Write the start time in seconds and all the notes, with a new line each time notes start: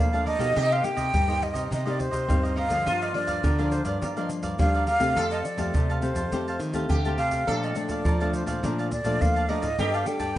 Already playing: A4 D5 F5 A5
0.00 F2 A#3 F5
0.13 F3 A3 D4 D5 F5 A5, pandeiro, shaker
0.26 A#4 D5 D#5 F5 A5, pandeiro
0.39 B2 A#3 D#4 G4 D5 F5 A5, pandeiro, shaker, surdo
0.56 C3 D#4 G4 A#4 C5 D#5, pandeiro, shaker, surdo
0.71 A#4 C5 D#5 F5, pandeiro, shaker
0.83 A#3 D#4 G4 G5, muted cavaquinho stroke, pandeiro, shaker
0.96 C3 A#4 C5 D#5, pandeiro, shaker, surdo
1.12 G2 G3 D#4 A#4 C5 D#5, pandeiro, shaker, surdo
1.28 A#3 D#4 G4 A#4 C5 D#5, pandeiro, shaker
1.42 D#5, pandeiro
1.54 C3 A#4 C5 D#5, pandeiro, shaker, surdo
1.70 C3 D#4 A#4 C5 D#5, pandeiro, shaker, surdo
1.85 A#3 D#4 G4 A#4 C5 D5 D#5, pandeiro, shaker
1.98 C5, muted cavaquinho stroke, pandeiro, shaker, surdo
2.11 C3 A#4 C5 D#5, pandeiro, shaker, surdo
2.29 G2 A#3 C4 D#4 G4, pandeiro, shaker, surdo
2.43 A#4 C5 D#5, pandeiro, shaker
2.56 D#4 A#4 C5 D#5 F5, pandeiro
2.69 D3 F3 A#3 D4 A#4 C5 D#5, pandeiro, shaker, surdo
2.85 G2 F4 G4 A#4 D5 F5, pandeiro, shaker, surdo
3.01 A#4 D5 D#5 F5, pandeiro, shaker
3.14 F3 A#3 D4 D5, muted cavaquinho stroke, pandeiro
3.27 G2 A#4 D5 F5, pandeiro, shaker, surdo
3.43 D3 G4 A#4 D5 F5, pandeiro, shaker, surdo
3.58 F3 A#3 D4 A#4 D5 F5, pandeiro, shaker
3.72 C5, pandeiro, shaker
3.85 G2 A#4 D5 F5, pandeiro, shaker, surdo
4.01 G2 G4 A#4 D5 F5, pandeiro, shaker, surdo
4.17 F3 A#3 D4 A#4 D5 D#5 F5, pandeiro, shaker
4.29 muted cavaquinho stroke, pandeiro, shaker
4.43 G2 A#4 D5 F5, pandeiro, shaker, surdo
4.59 D3 F3 G3 A#3 D4 F5, pandeiro, shaker, surdo
4.74 A#4 D5 F5, pandeiro, shaker
4.87 G4 A#4 D5 F5, pandeiro, shaker
5.00 C3 A3 C4 G4 A#4 D5 F5, pandeiro, shaker, surdo
5.16 F2 F3 G4 A4 C5 F5 A5, pandeiro, shaker, surdo
5.31 C5 D#5 F5 A5, pandeiro, shaker
5.43 D5, muted cavaquinho stroke, pandeiro, shaker
5.58 F2 A3 C4 G4 C5 F5 A5, pandeiro, shaker, surdo
5.74 C3 G4 C5 F5 A5, pandeiro, shaker, surdo
5.90 C5 F5 A5, pandeiro, shaker
6.01 A3 C4 G4 C5, pandeiro, shaker
6.15 F2 C5 F5 A5, pandeiro, shaker, surdo
6.32 F2 F3 A3 C4 G4 C5 F5 A5, pandeiro, shaker, surdo
6.48 C5 F5 A5, pandeiro, shaker
6.60 D#3, muted cavaquinho stroke, pandeiro, shaker
6.73 A3 C4 G4 C5 F5 A5, pandeiro, shaker, surdo
6.89 C3 D3 G4, pandeiro, shaker, surdo
7.05 A3 C4 G4 C5 F5 A5, pandeiro, shaker
7.17 C3 G4 C5 F5 A5, pandeiro
7.31 C5 F5 A5, pandeiro, shaker, surdo
7.47 A#2 F3 A3 D4 A4 A#4 D5 F5 A5, pandeiro, shaker, surdo
7.63 D5 D#5 F5 A5, pandeiro, shaker
7.75 F3 A3 D4 D5, muted cavaquinho stroke, pandeiro, shaker
7.89 A#2 D5 F5 A5, pandeiro, shaker, surdo
8.05 F2 F3 A#4 D5 F5 A5, pandeiro, shaker, surdo
8.20 F3 A3 D4 D5 F5 A5, pandeiro, shaker
8.33 C5, pandeiro, shaker
8.46 A#2 C5 D5 F5 A5, pandeiro, shaker, surdo
8.63 A#2 F3 A3 D4 A#4 D5 F5 A5, pandeiro, shaker, surdo
8.78 D5 F5 A5, pandeiro, shaker
8.91 D5, muted cavaquinho stroke, pandeiro, shaker, surdo
9.04 A#2 F3 A3 D4 D5 F5 A5, pandeiro, shaker, surdo
9.21 F2 A#3 F5, pandeiro, shaker, surdo
9.36 D5 F5 A5, pandeiro, shaker
9.49 F3 A3 D4 A#4 D5 D#5 F5 A5, pandeiro
9.61 A2 D5 F5 A5, pandeiro, shaker, surdo
9.79 G2 G3 A#3 D4 G4 A4 A#4 D5 G5 A5, pandeiro, shaker, surdo
9.94 D5 F5 G5 A5, pandeiro, shaker
10.06 A#3 D4 A4 G5, muted cavaquinho stroke, pandeiro, shaker
10.19 G2 D5 G5 A5, pandeiro, shaker, surdo